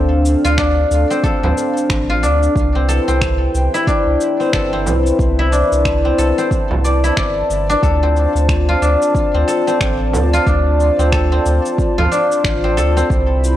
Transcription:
Already playing: D2 C4 D4 F4 A4 D5 F5
0.25 cabasa
0.44 D2 F4, cabasa
0.58 D4, finger snap, kick, cabasa
0.91 D2, cabasa
1.10 C4, cabasa
1.24 A4, kick, cabasa
1.43 D2 C4, frame drum
1.58 cabasa
1.77 cabasa
1.89 A1, finger snap, kick, cabasa
2.09 F4
2.23 D2 D4, cabasa
2.43 cabasa
2.55 C2 E4 B4 C5 G5, kick, cabasa
2.75 C4
2.88 A4, cabasa
3.08 C2 C4, cabasa
3.21 finger snap, kick, cabasa
3.54 C2, cabasa
3.74 E4, cabasa
3.87 D4, kick, cabasa
4.07 C2
4.21 cabasa
4.40 C4, cabasa
4.53 G1 A4, finger snap, kick, cabasa
4.73 C4
4.86 C2, frame drum, cabasa
5.07 cabasa
5.19 C2 A5, kick, cabasa
5.39 E4
5.52 D4, cabasa
5.72 C2, cabasa
5.85 finger snap, kick, cabasa
6.05 C4
6.18 C2 A4, cabasa
6.38 C4, cabasa
6.51 kick, cabasa
6.70 C2, frame drum
6.84 D5, cabasa
7.04 E4, cabasa
7.17 G1 D5, finger snap, kick, cabasa
7.50 G1, cabasa
7.70 D4, cabasa
7.83 D2 F4 A4 C5 D5, kick, cabasa
8.03 C4
8.17 cabasa
8.35 D2, cabasa
8.49 finger snap, kick, cabasa
8.69 F4
8.82 D2 D4, cabasa
9.02 cabasa
9.15 kick, cabasa
9.34 D2 C4
9.48 A4, cabasa
9.67 C4, cabasa
9.81 A1, finger snap, kick, cabasa
10.13 D2, frame drum, cabasa
10.33 F4, cabasa
10.46 D2 D4, kick, cabasa
10.80 cabasa
10.99 D2 C4, cabasa
11.12 A4, finger snap, kick, cabasa
11.32 C4
11.46 D2, cabasa
11.66 cabasa
11.78 kick, cabasa
11.98 D2 F4, frame drum
12.11 D4, cabasa
12.32 cabasa
12.44 A1, finger snap, kick, cabasa
12.64 C4
12.77 D2 A4, cabasa
12.97 C4, cabasa
13.10 C2 E4 G5 B5, kick, cabasa
13.44 cabasa

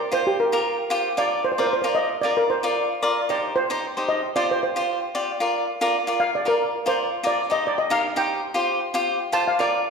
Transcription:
Already playing: D5
0.12 F4 G4 C5
0.27 G4
0.40 A#4
0.52 F4 G4 A#4
0.90 F4 G4 C5
1.17 F4 A#4 D5
1.45 C5
1.52 C5
1.58 F4 A#4 C5 D5
1.67 C5
1.73 C5
1.82 F4 A#4 C5 D5
1.95 D#5
2.21 F4 A#4 D5
2.37 A#4
2.50 C5
2.63 F4 A#4 D5
3.02 F4 A#4 D5
3.29 D#4 G4 C5 D5
3.56 C5
3.70 D#4 G4 C5
3.97 D#4 G4 C5
4.09 D#5
4.36 F4 G4 C5 D5
4.51 C5
4.63 C5
4.76 F4 G4 C5
5.15 F4 G4 D5
5.40 F4 A#4 D5
5.81 F4 A#4 D5
6.07 F4 A#4 D5
6.20 F5
6.35 D5
6.45 F4 A#4 D5
6.86 F4 A#4 C5 D5
7.23 F4 A#4 D5
7.50 D#4 G4 C5 D#5
7.67 D5
7.78 D#5
7.90 D#4 G4 A#4 F5
8.16 D#4 G4 C5 G5
8.54 F4 G4 C5
8.94 F4 G4 C5
9.32 F4 G4 C5 A5
9.48 F5
9.59 F4 A#4 D5

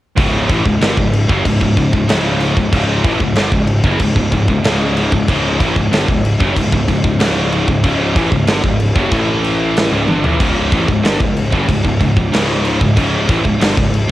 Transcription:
0.17 C#1 C#2 G#2 C#3, kick, crash
0.48 A1 A2 E3, kick, crash
0.65 C#1 C#2 G#2, kick
0.81 G1 G2 D3, snare, crash
0.97 C#1 C#2 G#2, kick
1.13 crash
1.29 F#1 F#2 C#3, kick
1.44 C#1 C#2 G#2, kick, crash
1.60 C#1 C#2 G#2, kick
1.77 C#1 C#2 G#2, kick, crash
1.93 C#1 C#2 G#2, kick
2.09 C#1 C#2 G#2 C#3, snare, crash
2.40 crash
2.56 C#1 C#2 G#2, kick
2.72 C#1 C#2 G#2 C#3, kick, crash
3.04 A1 A2 E3, kick, crash
3.20 C#1 C#2 G#2, kick
3.36 G1 G2 D3, snare, crash
3.52 C#1 C#2 G#2, kick
3.67 crash
3.84 F#1 F#2 C#3, kick
3.99 C#1 C#2 G#2, kick, crash
4.16 C#1 C#2 G#2, kick
4.32 C#1 C#2 G#2, kick, crash
4.48 C#1 C#2 G#2, kick
4.64 C#1 C#2 G#2 C#3, snare, crash
4.97 crash
5.12 C#1 C#2 G#2, kick
5.28 C#1 C#2 G#2 C#3, kick, crash
5.60 A1 A2 E3, kick, crash
5.76 C#1 C#2 G#2, kick
5.91 G1 G2 D3, snare, crash
6.08 C#1 C#2 G#2, kick
6.25 crash
6.40 F#1 F#2 C#3, kick
6.56 C#1 C#2 G#2, kick, crash
6.72 C#1 C#2 G#2, kick
6.88 C#1 C#2 G#2, kick, crash
7.04 C#1 C#2 G#2, kick
7.20 C#1 C#2 G#2 C#3, snare, crash
7.52 crash
7.68 C#1 C#2 G#2, kick
7.84 C#1 C#2 G#2 C#3, kick, crash
8.16 A1 A2 E3, kick, crash
8.32 C#1 C#2 G#2, kick
8.47 G1 G2 D3, snare, crash
8.63 C#1 C#2 G#2, kick
8.80 crash
8.96 F#1 F#2 C#3, kick
9.11 A1 A2 E3 A3, kick, crash
9.44 crash
9.77 snare, crash
9.91 C#1 C#2 G#2
10.07 G1 G2 D3, high tom
10.23 A1 A2 E3, floor tom
10.39 C#1 C#2 G#2 C#3, kick, crash
10.71 A1 A2 E3, kick, crash
10.87 C#1 C#2 G#2, kick
11.03 G1 G2 D3, snare, crash
11.20 C#1 C#2 G#2, kick
11.37 crash
11.51 F#1 F#2 C#3, kick
11.68 C#1 C#2 G#2, kick, crash
11.83 C#1 C#2 G#2, kick
11.99 C#1 C#2 G#2, kick, crash
12.16 C#1 C#2 G#2, kick
12.32 C#1 C#2 G#2 C#3, snare, crash
12.65 crash
12.81 C#1 C#2 G#2, kick
12.96 C#1 C#2 G#2 C#3, kick, crash
13.28 A1 A2 E3, kick, crash
13.43 C#1 C#2 G#2, kick
13.59 G1 G2 D3, snare, crash
13.76 C#1 C#2 G#2, kick
13.94 crash

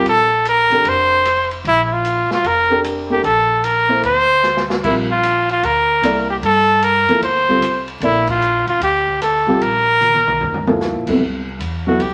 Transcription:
0.04 A#1, ride
0.09 A4
0.45 A#4, hi-hat pedal, ride
0.70 A1 D4 G4 A4 A#4, ride
0.84 F1, ride
0.89 C5
1.25 cross-stick, hi-hat pedal, ride
1.51 ride
1.64 A#1 E4, ride
1.84 E4
1.93 F4
2.05 hi-hat pedal, ride
2.31 F4, snare
2.44 F1 A#4, ride
2.70 D4 G4 A4 A#4
2.84 cross-stick, hi-hat pedal, ride
3.10 A3 D4 G4 A#4
3.23 A#1 A4, ride
3.64 A#4, hi-hat pedal, ride
3.89 A#3 E4 A4 C5
4.03 D2 C5, ride
4.43 snare, hi-hat pedal
4.57 snare
4.70 snare
4.83 A#1 G3 C4 E4 F4 A#4, kick, crash
5.11 F4
5.23 hi-hat pedal, ride
5.49 F4, ride
5.63 D2 A#4, ride
6.02 C2 A#3 E4 A4 D5, cross-stick, hi-hat pedal, ride
6.30 G4
6.42 G2 A4, ride
6.82 A#4, hi-hat pedal, ride
7.09 F3 A#3 E4 A4, muted upright bass stroke, ride
7.21 D2 C5, ride
7.49 G3 C4 F4 A4
7.61 C2, cross-stick, hi-hat pedal, ride
7.88 ride
8.00 A#1 A#3 E4 A4 D5, ride
8.27 F4, kick, crash
8.42 hi-hat pedal
8.67 A1 F4, ride
8.80 D2 G4, ride
9.08 kick
9.22 A4, cross-stick, hi-hat pedal, ride
9.47 C2 G3 C4 F4 G4
9.60 A#1 A#4, ride
10.01 hi-hat pedal, mid tom
10.14 mid tom
10.26 B1, mid tom
10.40 D2, floor tom
10.54 floor tom
10.67 F3 A#3 E4 A4, floor tom
10.81 snare, hi-hat pedal
10.93 A#2
11.06 G2 C3 F#3 B3 E4 A4, kick, crash
11.20 C2
11.59 E2, hi-hat pedal, ride
11.87 F#3 B3 E4 F#4 A4
12.00 C2 G4, ride

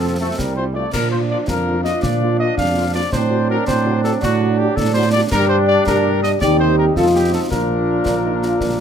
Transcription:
Already playing: F2 F3 C4 A4
0.02 C4 F4
0.20 A3 C4 F4 A4
0.38 C2 G3 A#4, concert bass drum, snare
0.57 C4 F4 C5
0.73 A3 C4 F4 D5
0.92 A#2 F3 D4 A#4, concert bass drum, snare, crash
1.12 A#3 D4 F4 C5
1.30 A#3 D4 F4 D5
1.48 F2 F4 A#4, concert bass drum, snare
1.67 A#3 D4 F4
1.84 A#3 D4 F4 D#5, snare
2.03 A#2 D5, concert bass drum, snare
2.22 A#3 D4 F4
2.39 A#3 D4 F4 D#5
2.57 F2 D4 F5, concert bass drum, snare
2.75 A#3 D4 F4
2.94 A#3 D4 F4 D5
3.10 A2 F#3 C4 D4 C5, concert bass drum, snare
3.30 D4 F#4
3.49 D4 F#4 A#4
3.67 A2 C4 C5, concert bass drum, snare
3.86 D4 F#4
4.04 D4 F#4 A4, snare
4.21 A2 D4 F#4, concert bass drum, snare
4.41 D4 F#4
4.59 D4 F#4 G4
4.76 A2 A4, concert bass drum, snare
4.94 D4 F#4 C5
5.12 D4 F#4 D5
5.32 G2 G3 D4 G4 A#4, concert bass drum, snare, crash
5.49 C5
5.67 D5
5.86 G2 D4 G4 A#4, concert bass drum, snare
6.23 D#5, snare
6.41 D#2 C4 D#4 G4 D5, concert bass drum, snare
6.60 C5
6.78 A#4
6.96 F2 F3 C4 D#4 F4 A4, concert bass drum, snare
7.15 G4
7.33 A4
7.49 A#1 F3 A#3 D4 F4 A#4, concert bass drum, snare
8.06 A#1 D4, concert bass drum, snare
8.24 D#4
8.43 F4, snare
8.60 A#1 D4, concert bass drum, snare

